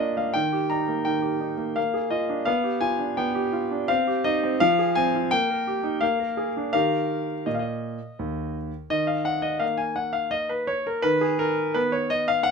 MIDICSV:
0, 0, Header, 1, 2, 480
1, 0, Start_track
1, 0, Key_signature, -3, "major"
1, 0, Tempo, 708383
1, 234, Time_signature, 3, 2, 24, 8
1, 3589, Tempo, 722892
1, 5989, Tempo, 710059
1, 5990, Key_signature, -6, "minor"
1, 8423, End_track
2, 0, Start_track
2, 0, Title_t, "Grand piano"
2, 0, Program_c, 0, 0
2, 0, Control_c, 0, 64, 127
2, 0, Note_on_c, 0, 58, 43
2, 0, Note_on_c, 0, 62, 32
2, 0, Note_on_c, 0, 65, 32
2, 0, Note_on_c, 0, 74, 49
2, 0, Note_on_c, 0, 75, 52
2, 105, Note_off_c, 0, 58, 0
2, 109, Note_off_c, 0, 75, 0
2, 115, Note_on_c, 0, 58, 31
2, 115, Note_on_c, 0, 77, 49
2, 185, Note_off_c, 0, 62, 0
2, 227, Note_on_c, 0, 79, 74
2, 234, Note_on_c, 0, 51, 54
2, 235, Note_off_c, 0, 58, 0
2, 236, Note_off_c, 0, 77, 0
2, 243, Control_c, 0, 64, 0
2, 249, Note_off_c, 0, 74, 0
2, 251, Note_off_c, 0, 65, 0
2, 356, Note_on_c, 0, 67, 36
2, 361, Control_c, 0, 64, 127
2, 472, Note_on_c, 0, 82, 60
2, 473, Note_off_c, 0, 79, 0
2, 478, Note_on_c, 0, 63, 37
2, 549, Note_off_c, 0, 67, 0
2, 597, Note_on_c, 0, 58, 36
2, 671, Note_off_c, 0, 63, 0
2, 710, Note_off_c, 0, 51, 0
2, 710, Note_on_c, 0, 79, 59
2, 716, Note_off_c, 0, 82, 0
2, 720, Note_on_c, 0, 51, 40
2, 791, Note_off_c, 0, 58, 0
2, 826, Note_on_c, 0, 67, 35
2, 951, Note_on_c, 0, 63, 32
2, 1026, Note_off_c, 0, 67, 0
2, 1067, Note_on_c, 0, 58, 38
2, 1149, Note_off_c, 0, 63, 0
2, 1185, Note_off_c, 0, 58, 0
2, 1188, Note_off_c, 0, 51, 0
2, 1191, Note_on_c, 0, 77, 62
2, 1195, Note_on_c, 0, 58, 45
2, 1197, Note_off_c, 0, 79, 0
2, 1206, Control_c, 0, 64, 0
2, 1313, Note_on_c, 0, 68, 33
2, 1324, Control_c, 0, 64, 127
2, 1426, Note_on_c, 0, 75, 57
2, 1430, Note_on_c, 0, 65, 37
2, 1436, Note_off_c, 0, 77, 0
2, 1509, Note_off_c, 0, 68, 0
2, 1555, Note_on_c, 0, 62, 36
2, 1627, Note_off_c, 0, 65, 0
2, 1663, Note_off_c, 0, 58, 0
2, 1663, Note_on_c, 0, 77, 78
2, 1671, Note_on_c, 0, 59, 56
2, 1672, Note_off_c, 0, 75, 0
2, 1677, Note_off_c, 0, 62, 0
2, 1685, Control_c, 0, 64, 0
2, 1787, Note_on_c, 0, 67, 35
2, 1808, Control_c, 0, 64, 127
2, 1901, Note_on_c, 0, 80, 73
2, 1905, Note_on_c, 0, 65, 40
2, 1910, Note_off_c, 0, 77, 0
2, 1984, Note_off_c, 0, 67, 0
2, 2025, Note_on_c, 0, 62, 35
2, 2103, Note_off_c, 0, 65, 0
2, 2140, Note_off_c, 0, 59, 0
2, 2149, Note_off_c, 0, 80, 0
2, 2149, Note_on_c, 0, 79, 61
2, 2150, Note_on_c, 0, 59, 49
2, 2223, Note_off_c, 0, 62, 0
2, 2269, Note_on_c, 0, 67, 39
2, 2391, Note_on_c, 0, 65, 43
2, 2465, Note_off_c, 0, 67, 0
2, 2515, Note_on_c, 0, 62, 40
2, 2585, Note_off_c, 0, 65, 0
2, 2618, Note_off_c, 0, 59, 0
2, 2630, Note_on_c, 0, 77, 78
2, 2632, Note_off_c, 0, 79, 0
2, 2635, Note_off_c, 0, 62, 0
2, 2635, Note_on_c, 0, 60, 49
2, 2642, Control_c, 0, 64, 0
2, 2761, Note_on_c, 0, 67, 41
2, 2768, Control_c, 0, 64, 127
2, 2872, Note_off_c, 0, 77, 0
2, 2876, Note_on_c, 0, 75, 73
2, 2880, Note_on_c, 0, 63, 45
2, 2948, Note_off_c, 0, 67, 0
2, 2994, Note_off_c, 0, 60, 0
2, 3004, Note_on_c, 0, 60, 45
2, 3067, Note_off_c, 0, 63, 0
2, 3113, Note_off_c, 0, 75, 0
2, 3118, Note_off_c, 0, 60, 0
2, 3119, Control_c, 0, 64, 0
2, 3119, Note_on_c, 0, 77, 96
2, 3123, Note_on_c, 0, 53, 69
2, 3236, Control_c, 0, 64, 127
2, 3245, Note_on_c, 0, 68, 45
2, 3354, Note_off_c, 0, 77, 0
2, 3357, Note_on_c, 0, 80, 87
2, 3364, Note_on_c, 0, 60, 49
2, 3429, Note_off_c, 0, 68, 0
2, 3490, Note_on_c, 0, 65, 47
2, 3549, Note_off_c, 0, 60, 0
2, 3582, Note_off_c, 0, 53, 0
2, 3594, Note_off_c, 0, 80, 0
2, 3598, Note_on_c, 0, 79, 88
2, 3599, Control_c, 0, 64, 0
2, 3600, Note_off_c, 0, 65, 0
2, 3605, Note_on_c, 0, 58, 59
2, 3709, Control_c, 0, 64, 127
2, 3725, Note_on_c, 0, 70, 44
2, 3839, Note_on_c, 0, 67, 41
2, 3907, Note_off_c, 0, 70, 0
2, 3946, Note_on_c, 0, 63, 44
2, 4023, Note_off_c, 0, 67, 0
2, 4057, Note_off_c, 0, 58, 0
2, 4060, Note_on_c, 0, 77, 72
2, 4065, Note_off_c, 0, 63, 0
2, 4068, Note_off_c, 0, 79, 0
2, 4071, Control_c, 0, 64, 0
2, 4072, Note_on_c, 0, 58, 58
2, 4187, Note_on_c, 0, 70, 40
2, 4197, Control_c, 0, 64, 127
2, 4303, Note_on_c, 0, 68, 37
2, 4376, Note_off_c, 0, 70, 0
2, 4432, Note_on_c, 0, 62, 38
2, 4494, Note_off_c, 0, 68, 0
2, 4530, Note_off_c, 0, 77, 0
2, 4532, Note_off_c, 0, 58, 0
2, 4539, Note_on_c, 0, 77, 80
2, 4544, Note_on_c, 0, 70, 39
2, 4546, Note_on_c, 0, 51, 50
2, 4546, Note_on_c, 0, 67, 37
2, 4547, Note_off_c, 0, 62, 0
2, 4552, Control_c, 0, 64, 0
2, 4668, Control_c, 0, 64, 127
2, 4883, Note_off_c, 0, 51, 0
2, 4930, Note_off_c, 0, 70, 0
2, 4931, Note_off_c, 0, 67, 0
2, 5024, Note_off_c, 0, 77, 0
2, 5026, Note_on_c, 0, 75, 46
2, 5028, Note_on_c, 0, 46, 40
2, 5034, Control_c, 0, 64, 0
2, 5073, Note_off_c, 0, 75, 0
2, 5082, Note_on_c, 0, 77, 39
2, 5114, Note_on_c, 0, 75, 43
2, 5125, Note_off_c, 0, 77, 0
2, 5366, Note_off_c, 0, 46, 0
2, 5511, Note_on_c, 0, 39, 36
2, 5748, Note_off_c, 0, 75, 0
2, 5847, Note_off_c, 0, 39, 0
2, 5983, Note_on_c, 0, 51, 47
2, 5983, Note_on_c, 0, 75, 70
2, 6097, Note_on_c, 0, 77, 52
2, 6107, Note_off_c, 0, 75, 0
2, 6132, Control_c, 0, 64, 127
2, 6218, Note_on_c, 0, 78, 66
2, 6224, Note_off_c, 0, 77, 0
2, 6334, Note_on_c, 0, 75, 57
2, 6345, Note_off_c, 0, 78, 0
2, 6452, Note_on_c, 0, 77, 59
2, 6455, Note_on_c, 0, 58, 36
2, 6463, Note_off_c, 0, 75, 0
2, 6478, Control_c, 0, 64, 0
2, 6573, Note_on_c, 0, 80, 59
2, 6582, Note_off_c, 0, 77, 0
2, 6696, Note_on_c, 0, 78, 56
2, 6703, Note_off_c, 0, 80, 0
2, 6811, Note_on_c, 0, 77, 59
2, 6825, Note_off_c, 0, 78, 0
2, 6934, Note_on_c, 0, 75, 70
2, 6942, Note_off_c, 0, 77, 0
2, 7059, Note_on_c, 0, 71, 54
2, 7064, Note_off_c, 0, 75, 0
2, 7181, Note_on_c, 0, 73, 66
2, 7186, Note_off_c, 0, 71, 0
2, 7307, Note_off_c, 0, 73, 0
2, 7310, Note_on_c, 0, 70, 59
2, 7402, Note_off_c, 0, 51, 0
2, 7418, Note_on_c, 0, 71, 86
2, 7424, Note_off_c, 0, 58, 0
2, 7426, Note_on_c, 0, 51, 55
2, 7431, Note_off_c, 0, 70, 0
2, 7544, Note_off_c, 0, 71, 0
2, 7545, Note_on_c, 0, 68, 59
2, 7549, Control_c, 0, 64, 127
2, 7664, Note_on_c, 0, 70, 74
2, 7667, Note_off_c, 0, 68, 0
2, 7904, Note_on_c, 0, 71, 77
2, 7907, Note_off_c, 0, 70, 0
2, 7912, Note_on_c, 0, 59, 46
2, 7919, Control_c, 0, 64, 0
2, 8025, Note_on_c, 0, 73, 63
2, 8027, Note_off_c, 0, 71, 0
2, 8145, Note_on_c, 0, 75, 72
2, 8147, Note_off_c, 0, 73, 0
2, 8265, Note_on_c, 0, 77, 78
2, 8268, Note_off_c, 0, 75, 0
2, 8370, Note_on_c, 0, 78, 79
2, 8387, Note_off_c, 0, 77, 0
2, 8423, Note_off_c, 0, 51, 0
2, 8423, Note_off_c, 0, 59, 0
2, 8423, Note_off_c, 0, 78, 0
2, 8423, End_track
0, 0, End_of_file